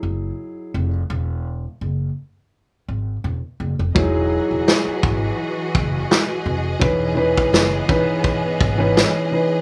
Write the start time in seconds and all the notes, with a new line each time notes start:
Already playing: F#3 D#4 E4 G#4
0.03 F#1
0.74 F1
1.10 E1
1.81 F#1
2.88 G#1
3.24 E1
3.60 F#1
3.79 F1
3.95 E1 E3 F#3 D#4 E4 F#4 G#4 D#5, kick
4.51 E1
4.68 snare
4.87 muted upright bass stroke
5.03 G#1, kick
5.75 F#1, kick
6.11 snare
6.46 F1
6.79 E1 E3 B3 C#4 D#4 B4, kick
7.15 E3 C#4 D#4 B4
7.37 kick
7.53 F#1, snare
7.88 E3 C#4 D#4 B4, kick
8.24 kick
8.61 G#1, kick
8.78 E3 C#4 D#4 B4
8.97 snare
9.31 E3 C#4 D#4 B4